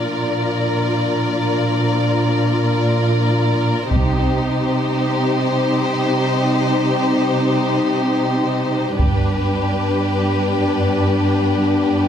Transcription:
Already playing: A#2 F3 D4 F4 A#4 D5
3.91 C2 C3 G3 D#4 G4 C5, taiko
8.99 G1 G2 B3 D4 G4 B4, taiko
11.56 cymbal swell

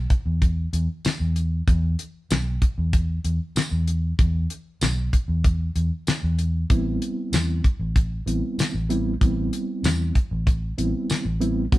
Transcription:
0.10 kick, closed hi-hat
0.26 E2
0.42 kick, closed hi-hat
0.73 E2, closed hi-hat
1.05 muted fingered electric bass stroke, snare, closed hi-hat, tambourine
1.20 E2
1.36 closed hi-hat
1.67 E2, kick, closed hi-hat
1.99 closed hi-hat
2.31 B1, snare, closed hi-hat, tambourine
2.62 kick, closed hi-hat
2.78 E2
2.93 kick, closed hi-hat
3.24 E2, closed hi-hat
3.56 muted fingered electric bass stroke, snare, closed hi-hat, tambourine
3.71 E2
3.88 closed hi-hat
4.19 E2, kick, closed hi-hat
4.50 closed hi-hat
4.81 B1, snare, closed hi-hat, tambourine
5.13 kick, closed hi-hat
5.28 E2
5.44 kick, closed hi-hat
5.76 E2, closed hi-hat
6.07 muted fingered electric bass stroke, snare, closed hi-hat, tambourine
6.23 E2
6.39 closed hi-hat
6.70 A1 G3 B3 C4 E4, kick, closed hi-hat
7.02 closed hi-hat
7.32 E2, snare, closed hi-hat, tambourine
7.64 kick, closed hi-hat
7.80 A1
7.96 kick, closed hi-hat
8.26 A1 G3 B3 C4 E4, closed hi-hat
8.58 muted fingered electric bass stroke, snare, closed hi-hat, tambourine
8.74 A1
8.89 G3 B3 C4 E4, closed hi-hat
9.21 A1 G3 B3 C4 E4, kick, closed hi-hat
9.53 closed hi-hat
9.83 E2, snare, closed hi-hat, tambourine
10.15 kick, closed hi-hat
10.31 A1
10.47 kick, closed hi-hat
10.78 A1 G3 B3 C4 E4, closed hi-hat
11.10 muted fingered electric bass stroke, snare, closed hi-hat, tambourine
11.25 A1
11.41 G3 B3 C4 E4, closed hi-hat
11.72 E1 G3 B3 D4 F#4, kick, closed hi-hat

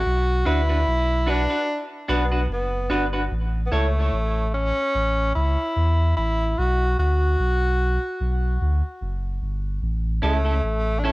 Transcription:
Already playing: F#4
0.06 B1
0.45 D2 D4 E4 F#4 B4
0.69 D4 F#4 B4
0.87 B1
1.26 D4 F#4 B4
1.50 D4 F#4 B4
2.08 B1 B3 D4 F#4 B4
2.32 D4 F#4 B4
2.49 F#1 B3
2.90 G1 D4 F#4 B4
3.13 D4 F#4 B4
3.31 A1
3.67 B3
3.72 C#2 A3 E4 A4 C#5
4.13 A1
4.54 C#4
4.95 A1
5.35 C#2 E4
5.76 E2
6.17 A1 E4
6.58 B1 F#4
6.98 D2 F#4
7.39 B1
8.20 B1
8.61 D2
9.01 F#1
9.42 G1
9.82 A1
10.22 C#2 A3 C#4 E4 A4
10.45 C#4 E4 A4
10.63 A1
10.99 D4
11.04 C#4 E4 A4

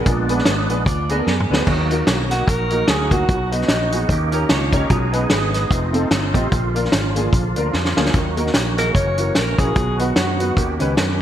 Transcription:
0.06 A#1 A#2 G#3 B3 D4, kick, closed hi-hat
0.28 B3 D4 G#4 B4, closed hi-hat
0.39 snare
0.45 G#1, snare, closed hi-hat
0.69 A#1 G#3 B3 D4 G#4 B4, closed hi-hat
0.86 D2 F4 D5, kick, closed hi-hat
1.09 B3 D4 G#4 A#4 B4, closed hi-hat
1.18 B3 D4 G#4 A#4
1.27 F#2 B3 G#4, snare
1.40 mid tom
1.50 D2 B3 D4 G#4 B4, snare
1.58 B3 D4 G#4 B4
1.67 D#2 D#3 F#3 A#3 D#4 F#4, kick, crash
1.90 A#3 D#4 F#4 A#4, closed hi-hat
2.07 B1, snare, closed hi-hat
2.30 A#3 D#4 F#4 A#4, snare, closed hi-hat
2.48 A#1 A#4, kick, closed hi-hat
2.70 A#3 D#4 F#4 A#4, closed hi-hat
2.88 D2 G#4, snare, closed hi-hat
3.11 A#3 D#4 F#4 G#4, kick, closed hi-hat
3.29 B1 B2 B3 F#4, kick, closed hi-hat
3.51 B3 D#4 F#4 B4, closed hi-hat
3.61 snare
3.68 A#1, snare, closed hi-hat
3.92 B3 D#4 F#4 G#4, closed hi-hat
4.09 D#2 D#3 A#3 C#4 G4, kick, closed hi-hat
4.32 C#4 D#4 G4 A#4, closed hi-hat
4.49 C#2 F4 C#5, snare, closed hi-hat
4.72 C#4 D#4 G4 A#4 C#5, kick, closed hi-hat
4.90 B1 B2 G#3 B3 G#4, kick, closed hi-hat
5.12 B3 D#4 G#4 B4, closed hi-hat
5.30 G#1 G#4 B4, snare, closed hi-hat
5.53 B4 D#5, snare, closed hi-hat
5.71 F1 A3 C4 F4, kick, closed hi-hat
5.93 C4 D#4 F4 A4, closed hi-hat
6.11 G1, snare, closed hi-hat
6.34 A1 C4 D#4 F4 G4, kick, closed hi-hat
6.52 A#1 A#2 D3 F3 A#3, kick, closed hi-hat
6.74 A#3 D4 F4 A#4, closed hi-hat
6.85 snare
6.92 G#1, snare, closed hi-hat
7.15 A#3 D4 F4 G#4, closed hi-hat
7.33 A#1, kick, closed hi-hat
7.56 D2 A#3 D4 F4 A#4, closed hi-hat
7.73 F2, snare
7.85 snare
7.96 D2 A#3 D4 F4 G#4, snare
8.06 snare
8.14 D#2 D#3 F#3 F#4, kick, closed hi-hat
8.36 A#3 D#4 F#4 A#4, closed hi-hat
8.47 snare
8.54 A#1, snare, closed hi-hat
8.76 A#3 D#4 F#4 G#4 A#4, snare, closed hi-hat
8.95 F#1 E3 C#4 C#5, kick, closed hi-hat
9.17 C#4 E4 F#4 A#4, closed hi-hat
9.35 A#1 A#4, snare, closed hi-hat
9.58 A#1 C#4 E4 F#4 G#4 A#4, kick, closed hi-hat
9.76 B1 B2 D#3 F#3 B3, kick, closed hi-hat
9.98 B3 D#4 F#4 B4, closed hi-hat
10.16 F#2, snare, closed hi-hat
10.39 B3 D#4 F#4 B4, closed hi-hat
10.57 D#2 D#3 C#4 G4, kick, closed hi-hat
10.79 C#2 C#4 D#4 G4 B4, closed hi-hat
10.97 F#2, snare, closed hi-hat

